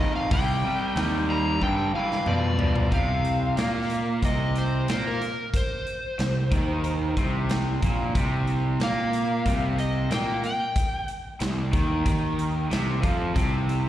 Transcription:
0.00 0.28 F2 medium
0.00 0.28 D#3 medium
0.00 0.15 D#5 loud
0.16 0.31 F5 medium
0.31 0.62 C2 medium
0.31 0.61 C3 medium
0.31 0.61 G3 loud
0.31 1.27 G5 loud
0.31 kick loud
0.31 open hi-hat medium
0.65 0.94 C3 medium
0.65 0.94 G3 medium
0.65 muted picked electric bass stroke soft
0.95 1.60 D#2 medium
0.95 1.26 C3 medium
0.95 1.26 G3 loud
0.95 snare loud
0.95 open hi-hat medium
1.29 1.59 C3 medium
1.29 1.59 G3 medium
1.29 1.61 A#5 loud
1.60 1.91 G2 medium
1.60 1.92 G2 loud
1.60 1.91 D3 medium
1.60 1.94 G5 medium
1.60 kick medium
1.78 high tom soft
1.94 2.24 G2 medium
1.94 2.24 E3 medium
1.94 2.27 F5 medium
1.94 muted picked electric bass stroke soft
2.12 snare medium
2.26 2.56 G2 medium
2.26 2.91 B2 medium
2.26 2.56 F3 medium
2.26 2.91 D5 loud
2.26 mid tom medium
2.59 2.89 G2 medium
2.59 2.89 F3 medium
2.59 floor tom loud
2.76 floor tom loud
2.91 3.54 C2 medium
2.91 3.56 C3 loud
2.91 4.20 F5 medium
2.91 kick loud
2.91 closed hi-hat medium
3.24 closed hi-hat medium
3.57 4.19 A#2 medium
3.57 4.22 A#3 medium
3.57 snare medium
3.57 closed hi-hat medium
3.90 closed hi-hat medium
4.22 4.84 C2 loud
4.22 4.88 C3 medium
4.22 4.56 D#5 medium
4.22 kick medium
4.22 closed hi-hat medium
4.55 4.89 C5 medium
4.55 closed hi-hat medium
4.88 5.19 A#2 medium
4.88 5.21 A#3 loud
4.88 5.05 C5 medium
4.88 snare loud
4.88 closed hi-hat medium
5.07 5.54 A#4 medium
5.21 closed hi-hat medium
5.54 7.47 C5 medium
5.54 kick loud
5.54 closed hi-hat loud
5.86 closed hi-hat medium
6.19 6.50 C2 medium
6.19 6.45 C3 medium
6.19 snare medium
6.19 closed hi-hat medium
6.52 7.13 D#2 medium
6.52 7.16 D#3 medium
6.52 kick loud
6.52 closed hi-hat medium
6.84 closed hi-hat medium
7.17 7.78 C2 medium
7.17 7.82 C3 medium
7.17 kick medium
7.17 closed hi-hat medium
7.49 snare loud
7.49 closed hi-hat medium
7.82 8.13 A#1 medium
7.82 8.14 A#2 medium
7.82 kick loud
7.82 closed hi-hat medium
8.15 8.76 C2 medium
8.15 8.79 C3 loud
8.15 kick loud
8.15 closed hi-hat medium
8.47 closed hi-hat medium
8.80 9.41 A#2 medium
8.80 9.45 A#3 loud
8.80 9.77 F5 medium
8.80 snare loud
8.80 closed hi-hat medium
9.13 closed hi-hat medium
9.46 10.07 C2 loud
9.46 10.10 C3 medium
9.46 kick medium
9.46 closed hi-hat medium
9.78 10.11 D#5 medium
9.78 closed hi-hat medium
10.10 10.41 A#2 medium
10.10 10.42 A#3 medium
10.10 10.43 G5 medium
10.10 snare loud
10.10 closed hi-hat medium
10.43 11.08 G5 medium
10.43 closed hi-hat medium
10.76 kick loud
10.76 closed hi-hat loud
11.08 closed hi-hat medium
11.40 11.71 C2 medium
11.40 11.67 C3 medium
11.40 snare loud
11.40 closed hi-hat medium
11.73 12.04 D#2 medium
11.73 12.04 D#3 medium
11.73 kick loud
11.73 closed hi-hat medium
12.06 12.67 D#2 loud
12.06 12.70 D#3 medium
12.06 kick loud
12.06 closed hi-hat medium
12.39 closed hi-hat medium
12.70 13.01 C2 medium
12.70 13.01 C3 loud
12.70 snare loud
12.70 closed hi-hat medium
13.02 13.34 F2 medium
13.02 13.34 F3 medium
13.02 kick loud
13.02 closed hi-hat medium
13.35 13.89 C2 medium
13.35 13.89 C3 loud
13.35 kick loud
13.35 closed hi-hat medium
13.69 closed hi-hat medium

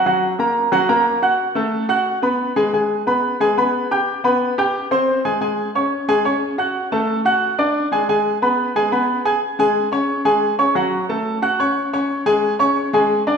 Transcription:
0.06 0.33 F#3 medium
0.06 0.33 F#4 medium
0.06 0.33 F#5 medium
0.39 0.66 A#3 medium
0.39 0.67 A#4 medium
0.39 0.67 A#5 medium
0.72 0.86 F#3 medium
0.72 0.86 F#4 medium
0.72 0.86 F#5 medium
0.89 1.16 A#3 medium
0.89 1.16 A#4 medium
0.89 1.16 A#5 medium
1.22 1.50 F#4 medium
1.22 1.50 F#5 medium
1.22 1.50 F#6 medium
1.55 1.83 A3 medium
1.55 1.83 A4 medium
1.55 1.84 A5 medium
1.89 2.16 F#4 medium
1.89 2.17 F#5 medium
1.89 2.17 F#6 medium
2.22 2.50 B3 medium
2.22 2.50 B4 medium
2.22 2.50 B5 medium
2.56 2.70 G#3 medium
2.56 2.70 G#4 medium
2.56 2.70 G#5 medium
2.73 3.01 G#3 medium
2.73 3.01 G#4 medium
2.73 3.01 G#5 medium
3.07 3.34 B3 medium
3.07 3.34 B4 medium
3.07 3.35 B5 medium
3.40 3.54 G#3 medium
3.40 3.54 G#4 medium
3.40 3.54 G#5 medium
3.58 3.85 B3 medium
3.58 3.85 B4 medium
3.58 3.85 B5 medium
3.91 4.18 G4 medium
3.91 4.18 G5 medium
3.91 4.18 G6 medium
4.24 4.51 B3 medium
4.24 4.51 B4 medium
4.24 4.52 B5 medium
4.58 4.85 G4 medium
4.58 4.85 G5 medium
4.58 4.86 G6 medium
4.91 5.18 C4 medium
4.91 5.18 C5 medium
4.91 5.19 C6 medium
5.25 5.38 G#3 medium
5.25 5.38 G#4 medium
5.25 5.38 G#5 medium
5.41 5.68 G#3 medium
5.41 5.69 G#4 medium
5.41 5.69 G#5 medium
5.75 6.02 C#4 medium
5.75 6.02 C#5 medium
5.75 6.02 C#6 medium
6.08 6.22 G#3 medium
6.08 6.22 G#4 medium
6.08 6.22 G#5 medium
6.25 6.52 C#4 medium
6.25 6.52 C#5 medium
6.25 6.52 C#6 medium
6.58 6.85 F#4 medium
6.58 6.86 F#5 medium
6.58 6.86 F#6 medium
6.92 7.19 A3 medium
6.92 7.19 A4 medium
6.92 7.19 A5 medium
7.25 7.52 F#4 medium
7.25 7.53 F#5 medium
7.25 7.53 F#6 medium
7.58 7.86 D4 medium
7.58 7.86 D5 medium
7.58 7.86 D6 medium
7.92 8.05 G#3 medium
7.92 8.06 G#4 medium
7.92 8.06 G#5 medium
8.09 8.36 G#3 medium
8.09 8.36 G#4 medium
8.09 8.36 G#5 medium
8.42 8.69 B3 medium
8.42 8.69 B4 medium
8.42 8.70 B5 medium
8.76 8.89 G#3 medium
8.76 8.89 G#4 medium
8.76 8.89 G#5 medium
8.92 9.19 B3 medium
8.92 9.19 B4 medium
8.92 9.20 B5 medium
9.25 9.39 G#4 medium
9.25 9.39 G#5 medium
9.25 9.39 G#6 medium
9.59 9.86 G#3 medium
9.59 9.87 G#4 medium
9.59 9.87 G#5 medium
9.92 10.19 C#4 medium
9.92 10.20 C#5 medium
9.92 10.20 C#6 medium
10.25 10.53 G#3 medium
10.25 10.53 G#4 medium
10.25 10.53 G#5 medium
10.58 10.72 C#4 medium
10.58 10.73 C#5 medium
10.58 10.73 C#6 medium
10.75 11.03 F#3 medium
10.75 11.03 F#4 medium
10.75 11.03 F#5 medium
11.09 11.37 A3 medium
11.09 11.36 A4 medium
11.09 11.37 A5 medium
11.42 11.56 F#4 medium
11.42 11.56 F#5 medium
11.42 11.56 F#6 medium
11.59 11.87 C#4 medium
11.59 11.87 C#5 medium
11.59 11.87 C#6 medium
11.93 12.20 C#4 medium
11.93 12.20 C#5 medium
11.93 12.20 C#6 medium
12.26 12.53 G#3 medium
12.26 12.53 G#4 medium
12.26 12.53 G#5 medium
12.59 12.87 C#4 medium
12.59 12.87 C#5 medium
12.59 12.87 C#6 medium
12.93 13.20 G#3 loud
12.93 13.21 G#4 medium
12.93 13.21 G#5 medium
13.27 13.37 D4 medium
13.27 13.37 D5 medium
13.27 13.37 D6 medium

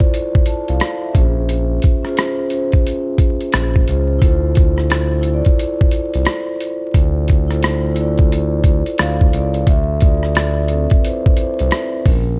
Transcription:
0.00 1.17 E4 loud
0.00 1.15 F4 loud
0.00 0.69 A4 loud
0.00 0.47 C5 loud
0.00 0.48 D5 medium
0.00 kick medium
0.14 closed hi-hat medium
0.35 kick loud
0.46 0.68 C5 medium
0.46 0.67 A5 medium
0.46 closed hi-hat medium
0.68 0.80 C2 medium
0.68 1.01 A4 medium
0.68 1.01 F5 medium
0.68 closed hi-hat soft
0.80 cross-stick loud
0.80 closed hi-hat medium
1.03 1.35 E5 medium
1.13 1.79 A#1 loud
1.13 1.82 C#4 medium
1.13 1.83 F4 medium
1.13 1.84 G#4 medium
1.13 kick medium
1.13 closed hi-hat medium
1.19 1.85 C5 medium
1.49 closed hi-hat medium
1.82 kick medium
1.82 closed hi-hat medium
2.03 2.36 C#4 medium
2.03 2.37 F4 medium
2.03 2.38 G#4 medium
2.03 cross-stick soft
2.09 2.39 C5 medium
2.17 cross-stick loud
2.17 closed hi-hat medium
2.49 3.42 C#4 medium
2.49 3.43 F4 medium
2.49 3.44 G#4 medium
2.49 closed hi-hat medium
2.55 3.44 C5 loud
2.72 kick medium
2.72 closed hi-hat soft
2.87 closed hi-hat medium
3.18 kick medium
3.18 closed hi-hat medium
3.41 closed hi-hat soft
3.52 3.85 A#1 loud
3.52 cross-stick loud
3.52 closed hi-hat medium
3.76 kick medium
3.86 4.19 C#2 loud
3.86 4.12 C#4 medium
3.86 4.13 F4 medium
3.86 4.14 G#4 medium
3.86 closed hi-hat medium
3.91 4.15 C5 medium
4.19 5.42 D2 loud
4.19 4.54 E4 loud
4.19 4.55 F4 loud
4.19 4.55 A4 loud
4.19 kick loud
4.19 closed hi-hat medium
4.25 4.56 C5 loud
4.55 kick medium
4.55 closed hi-hat medium
4.77 5.10 E4 medium
4.77 5.10 F4 medium
4.77 5.11 A4 medium
4.77 cross-stick soft
4.82 5.12 C5 medium
4.90 cross-stick loud
4.90 closed hi-hat medium
5.22 6.14 E4 medium
5.22 6.15 F4 medium
5.22 6.16 A4 medium
5.22 closed hi-hat medium
5.27 5.34 C5 medium
5.34 6.20 D5 loud
5.45 kick medium
5.45 closed hi-hat soft
5.59 closed hi-hat medium
5.81 kick medium
5.91 closed hi-hat medium
6.14 6.26 C2 medium
6.14 closed hi-hat soft
6.25 cross-stick loud
6.25 closed hi-hat medium
6.60 closed hi-hat medium
6.94 8.83 D2 loud
6.94 kick loud
6.94 closed hi-hat medium
7.28 kick medium
7.28 closed hi-hat medium
7.48 7.82 E4 medium
7.48 7.83 F4 medium
7.48 7.83 A4 medium
7.48 cross-stick soft
7.48 closed hi-hat soft
7.54 7.84 C5 medium
7.63 cross-stick loud
7.63 closed hi-hat medium
7.95 8.87 E4 loud
7.95 8.88 F4 medium
7.95 8.89 A4 medium
7.95 closed hi-hat medium
8.01 8.90 D5 medium
8.18 kick medium
8.18 closed hi-hat soft
8.32 closed hi-hat medium
8.64 kick medium
8.64 closed hi-hat medium
8.86 closed hi-hat soft
8.98 9.31 D2 loud
8.98 9.33 A4 medium
8.98 9.64 F5 loud
8.98 cross-stick loud
8.98 closed hi-hat medium
9.21 kick medium
9.30 9.65 C#2 medium
9.30 9.57 E4 medium
9.30 9.58 F4 medium
9.30 9.59 A4 medium
9.30 closed hi-hat medium
9.36 9.60 D5 medium
9.54 closed hi-hat soft
9.67 10.87 D2 loud
9.67 9.84 A4 medium
9.67 9.84 E5 loud
9.67 kick loud
9.67 closed hi-hat medium
10.00 10.66 F4 medium
10.00 10.72 D5 medium
10.00 kick medium
10.00 closed hi-hat medium
10.23 cross-stick soft
10.35 cross-stick loud
10.35 closed hi-hat medium
10.68 10.97 C4 medium
10.68 11.00 A4 loud
10.68 closed hi-hat medium
10.90 kick medium
10.90 closed hi-hat soft
10.99 11.04 B4 medium
11.04 11.36 E4 medium
11.04 11.37 C5 medium
11.04 closed hi-hat medium
11.26 kick loud
11.37 12.02 E4 medium
11.37 12.02 C5 loud
11.37 closed hi-hat medium
11.59 11.71 C2 loud
11.59 closed hi-hat soft
11.71 cross-stick loud
11.71 closed hi-hat medium
12.06 12.40 A#1 loud
12.06 12.38 C#4 medium
12.06 12.40 A#4 medium
12.06 kick loud
12.06 open hi-hat soft

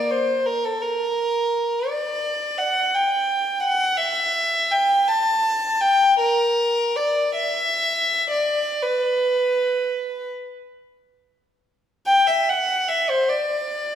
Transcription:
0.00 0.10 D5 medium
0.10 0.46 C5 medium
0.46 0.64 A#4 medium
0.64 0.81 A4 medium
0.81 1.89 A#4 medium
1.89 2.59 D5 medium
2.58 2.93 F#5 medium
2.94 3.63 G5 medium
3.63 3.97 F#5 medium
3.97 4.70 E5 medium
4.71 5.08 G5 medium
5.08 5.81 A5 medium
5.81 6.18 G5 medium
6.19 6.95 A#4 medium
6.96 7.37 D5 medium
7.36 8.27 E5 medium
8.31 8.82 D5 medium
8.82 10.25 B4 medium
12.06 12.25 G5 medium
12.27 12.47 E5 medium
12.49 12.89 F#5 medium
12.88 13.08 E5 medium
13.10 13.29 C5 medium
13.29 13.95 D5 medium

